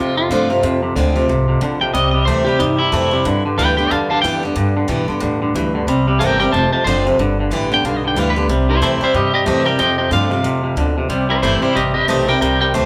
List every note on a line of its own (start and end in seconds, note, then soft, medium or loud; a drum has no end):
0.00 0.15 F2 medium
0.00 0.29 F2 medium
0.00 0.15 C3 medium
0.00 0.61 C3 medium
0.00 0.16 F4 loud
0.17 0.29 F2 medium
0.17 0.29 C3 medium
0.17 0.81 F4 medium
0.30 0.48 F2 medium
0.30 0.62 G2 medium
0.30 0.48 D3 medium
0.30 0.49 F3 medium
0.30 0.50 A3 loud
0.30 0.50 C4 medium
0.30 0.49 F4 loud
0.50 0.61 F2 medium
0.50 0.62 C3 medium
0.50 0.64 C4 soft
0.50 0.62 F4 medium
0.63 0.80 F2 medium
0.63 0.95 F2 medium
0.63 1.26 F2 loud
0.63 0.81 C3 medium
0.82 0.94 F2 medium
0.82 0.94 C3 medium
0.95 1.28 D2 loud
0.95 1.13 F2 medium
0.95 1.13 D3 medium
0.95 1.15 D#3 medium
0.95 1.15 G#3 medium
0.95 1.15 C4 medium
0.95 1.14 F4 medium
1.15 1.27 F2 medium
1.15 1.27 C3 medium
1.15 1.29 C4 medium
1.15 1.28 F4 medium
1.28 1.60 C2 medium
1.28 1.46 F2 medium
1.28 1.60 G#2 medium
1.28 1.47 C3 medium
1.48 1.60 F2 medium
1.48 1.60 C3 medium
1.61 1.93 A#1 medium
1.61 1.79 F2 medium
1.61 1.93 A#2 medium
1.61 1.79 D3 loud
1.81 1.93 F2 medium
1.81 1.93 C3 medium
1.81 1.93 G5 medium
1.94 2.26 C2 medium
1.94 2.12 C3 medium
1.94 2.57 C3 loud
1.94 2.12 G3 medium
1.94 2.10 D#5 loud
2.11 2.26 C3 medium
2.11 2.26 G3 medium
2.11 2.25 D#5 medium
2.25 2.59 D2 medium
2.25 2.45 C3 medium
2.25 2.46 E3 medium
2.25 2.46 G3 medium
2.25 2.45 A3 medium
2.25 2.46 C4 medium
2.25 2.45 E4 loud
2.25 2.45 C5 medium
2.45 2.58 C3 medium
2.45 2.58 G3 medium
2.45 2.60 C4 soft
2.45 2.59 E4 medium
2.45 2.58 G4 medium
2.59 2.91 E2 medium
2.59 3.23 G2 medium
2.59 2.77 C3 medium
2.59 2.77 G3 medium
2.59 2.79 D#4 medium
2.78 2.91 C3 medium
2.78 2.91 G3 medium
2.78 3.43 E4 loud
2.92 3.24 F2 medium
2.92 3.10 C3 medium
2.92 3.11 E3 medium
2.92 3.11 G3 medium
2.92 3.10 A3 loud
2.92 3.12 C4 loud
2.92 3.10 E4 loud
3.11 3.24 C3 medium
3.11 3.24 G3 medium
3.11 3.25 C4 soft
3.11 3.24 E4 medium
3.25 3.88 G2 medium
3.25 3.43 G2 medium
3.25 3.57 G2 loud
3.25 3.43 D3 medium
3.45 3.57 G2 medium
3.45 3.57 D3 medium
3.58 3.90 D2 loud
3.58 3.76 G2 medium
3.58 3.77 D3 medium
3.58 3.76 E3 medium
3.58 3.78 G3 medium
3.58 3.78 B3 medium
3.58 3.77 G4 medium
3.58 3.76 B4 medium
3.58 3.76 G5 loud
3.77 3.89 G2 medium
3.77 3.90 D3 medium
3.77 3.91 B3 soft
3.77 3.91 G4 medium
3.77 3.91 B4 medium
3.77 3.91 G5 loud
3.91 4.23 E2 medium
3.91 4.09 G2 medium
3.91 4.23 D3 medium
3.91 4.09 D3 medium
3.91 4.09 F5 medium
3.91 4.09 A5 loud
4.10 4.22 G2 medium
4.10 4.23 D3 medium
4.10 4.22 F5 medium
4.10 4.21 A5 loud
4.22 4.55 F2 medium
4.22 4.41 G2 medium
4.22 4.43 D3 medium
4.22 4.42 E3 loud
4.22 4.43 G3 loud
4.22 4.43 B3 loud
4.22 4.42 G4 loud
4.22 4.42 G5 medium
4.43 4.56 G2 medium
4.43 4.55 D3 medium
4.43 4.57 B3 medium
4.43 4.56 G4 medium
4.55 5.19 G2 loud
4.55 4.88 G2 medium
4.55 4.74 G2 medium
4.55 4.74 D3 medium
4.76 4.87 G2 medium
4.76 4.88 D3 loud
4.88 5.07 G2 medium
4.88 5.07 B2 medium
4.88 5.07 D3 medium
4.88 5.07 E3 loud
4.88 5.08 G3 medium
4.88 5.08 B3 medium
4.88 5.07 G4 medium
5.08 5.20 G2 medium
5.08 5.21 D3 medium
5.08 5.22 B3 soft
5.08 5.21 G4 medium
5.08 muted upright bass stroke soft
5.20 5.54 E2 medium
5.20 5.40 G2 medium
5.20 5.53 A2 medium
5.20 5.40 D3 medium
5.42 5.53 G2 medium
5.42 5.54 D3 medium
5.54 5.86 D2 medium
5.54 5.73 G2 medium
5.54 5.87 B2 loud
5.54 5.73 E3 medium
5.74 5.86 G2 medium
5.74 5.87 D3 medium
5.87 6.19 C2 medium
5.87 6.05 C3 medium
5.87 6.51 C3 loud
5.87 6.06 G3 loud
6.07 6.19 C3 medium
6.07 6.19 G3 medium
6.19 6.52 G1 loud
6.19 6.38 C3 medium
6.19 6.39 E3 medium
6.19 6.40 G3 loud
6.19 6.38 A3 medium
6.19 6.40 C4 loud
6.19 6.39 E4 medium
6.19 6.38 A#4 medium
6.19 6.38 G5 loud
6.39 6.52 C3 medium
6.39 6.52 G3 medium
6.39 6.54 C4 medium
6.39 6.53 E4 medium
6.39 6.51 A#4 medium
6.39 6.52 G5 medium
6.52 6.71 F1 medium
6.52 6.71 F2 medium
6.52 7.16 F2 medium
6.52 6.71 C3 medium
6.52 6.71 C5 medium
6.52 6.72 A5 loud
6.72 6.85 F2 medium
6.72 6.85 C3 medium
6.72 6.83 C5 medium
6.72 6.86 A5 medium
6.72 muted upright bass stroke soft
6.84 7.17 F#1 medium
6.84 7.04 F2 medium
6.84 7.04 D3 loud
6.84 7.05 F3 medium
6.84 7.05 A3 loud
6.84 7.06 C4 loud
6.84 7.04 C5 loud
6.89 7.05 F4 loud
7.06 7.18 F2 medium
7.06 7.18 C3 medium
7.06 7.20 C4 medium
7.06 7.19 F4 medium
7.18 7.50 G1 medium
7.18 7.82 G2 medium
7.18 7.37 G2 medium
7.18 7.37 D3 loud
7.39 7.51 G2 medium
7.39 7.51 D3 medium
7.51 7.82 A1 loud
7.51 7.69 G2 medium
7.51 7.70 D3 medium
7.51 7.70 E3 medium
7.51 7.70 G3 medium
7.51 7.71 B3 medium
7.51 7.70 G4 medium
7.71 7.83 G2 medium
7.71 7.83 D3 medium
7.71 7.85 B3 medium
7.71 7.84 G4 medium
7.71 7.85 G5 loud
7.83 8.15 B1 medium
7.83 8.02 G2 medium
7.83 8.15 D3 medium
7.83 8.02 D3 medium
7.83 7.97 F5 medium
7.97 8.06 D#5 medium
8.04 8.15 G2 medium
8.04 8.16 D3 medium
8.04 8.19 G5 medium
8.15 8.48 D2 medium
8.15 8.34 G2 medium
8.15 8.35 D3 medium
8.15 8.35 E3 loud
8.15 8.36 G3 medium
8.15 8.36 B3 loud
8.15 8.35 G4 medium
8.15 8.29 F5 loud
8.30 8.46 B4 loud
8.36 8.48 G2 medium
8.36 8.49 D3 medium
8.36 8.50 B3 soft
8.36 8.49 G4 medium
8.49 8.81 C2 loud
8.49 9.12 C3 medium
8.49 8.67 C3 medium
8.49 8.67 G3 loud
8.69 8.81 C3 medium
8.69 8.81 G3 medium
8.69 8.81 E4 medium
8.69 8.82 C5 medium
8.81 9.00 E2 loud
8.81 9.00 C3 medium
8.81 9.01 E3 medium
8.81 9.01 G3 medium
8.81 9.00 A3 loud
8.81 9.01 C4 loud
8.81 9.00 E4 medium
8.81 9.00 E4 loud
8.81 9.01 C5 medium
9.01 9.13 C3 medium
9.01 9.13 G3 medium
9.01 9.15 C4 medium
9.01 9.14 E4 medium
9.01 9.15 E4 medium
9.01 9.15 C5 medium
9.01 muted upright bass stroke soft
9.14 9.46 G2 medium
9.14 9.77 G2 medium
9.14 9.32 C3 medium
9.14 9.32 G3 medium
9.14 9.33 G4 medium
9.14 9.34 D#5 medium
9.34 9.45 C3 medium
9.34 9.46 G3 medium
9.34 9.45 G4 medium
9.34 9.46 D#5 medium
9.46 9.79 E2 medium
9.46 9.64 C3 medium
9.46 9.65 E3 loud
9.46 9.66 G3 medium
9.46 9.65 A3 loud
9.46 9.66 C4 loud
9.46 9.65 E4 loud
9.46 9.65 G4 medium
9.46 9.66 D#5 loud
9.65 9.78 C3 medium
9.65 9.78 G3 medium
9.65 9.80 C4 soft
9.65 9.79 E4 medium
9.65 9.78 A#4 medium
9.65 9.79 G5 medium
9.79 9.97 F2 medium
9.79 10.42 F2 loud
9.79 10.10 F2 medium
9.79 9.97 C3 medium
9.79 9.97 D#5 medium
9.79 9.98 G5 medium
9.98 10.10 F2 medium
9.98 10.11 C3 medium
9.98 10.11 D#5 medium
9.98 10.12 G5 medium
10.11 10.29 F2 medium
10.11 10.43 G2 loud
10.11 10.30 D3 medium
10.11 10.31 F3 medium
10.11 10.31 A3 medium
10.11 10.31 C4 medium
10.11 10.30 F4 loud
10.11 10.76 F5 medium
10.30 10.42 F2 medium
10.30 10.42 C3 medium
10.30 10.45 C4 soft
10.30 10.44 F4 medium
10.43 10.62 F2 medium
10.43 10.75 F2 medium
10.43 10.76 A2 medium
10.43 10.62 C3 medium
10.63 10.76 F2 medium
10.63 10.76 C3 medium
10.76 11.08 D2 medium
10.76 10.95 F2 medium
10.76 11.09 B2 medium
10.76 10.95 D3 loud
10.97 11.09 F2 medium
10.97 11.08 C3 medium
11.09 11.41 C2 medium
11.09 11.28 C3 medium
11.09 11.73 C3 medium
11.09 11.28 G3 medium
11.29 11.41 C3 medium
11.29 11.42 G3 medium
11.29 11.41 E4 medium
11.29 11.41 C5 medium
11.42 11.61 G1 loud
11.42 11.60 C3 medium
11.42 11.62 E3 medium
11.42 11.62 G3 loud
11.42 11.61 A3 medium
11.42 11.62 C4 medium
11.42 11.61 E4 medium
11.42 11.61 E4 loud
11.42 11.62 C5 medium
11.61 11.74 C3 medium
11.61 11.74 G3 medium
11.61 11.76 C4 medium
11.61 11.75 E4 medium
11.61 11.76 C5 loud
11.61 muted upright bass stroke soft
11.75 12.07 A1 medium
11.75 12.39 G2 medium
11.75 11.93 C3 medium
11.75 11.93 G3 loud
11.75 11.93 G4 medium
11.75 11.93 D#5 medium
11.94 12.07 C3 medium
11.94 12.07 G3 medium
11.94 12.07 G4 medium
11.94 12.07 D#5 medium
12.08 12.40 B1 medium
12.08 12.26 C3 medium
12.08 12.27 E3 medium
12.08 12.27 G3 loud
12.08 12.26 A3 medium
12.08 12.28 C4 medium
12.08 12.27 E4 loud
12.08 12.27 G4 medium
12.08 12.28 D#5 medium
12.28 12.40 C3 medium
12.28 12.40 G3 medium
12.28 12.42 C4 medium
12.28 12.41 E4 medium
12.28 12.40 A#4 medium
12.28 12.41 G5 medium
12.41 12.73 C2 medium
12.41 12.59 C3 medium
12.41 12.86 C3 loud
12.41 12.59 G3 medium
12.41 12.59 A#4 medium
12.41 12.60 G5 medium
12.61 12.73 C3 medium
12.61 12.73 G3 medium
12.61 12.73 A#4 medium
12.61 12.74 G5 loud
12.74 12.86 D2 loud
12.74 12.86 C3 medium
12.74 12.86 E3 medium
12.74 12.86 G3 medium
12.74 12.86 A3 loud
12.74 12.86 C4 loud
12.74 12.86 E4 medium
12.74 12.86 C5 loud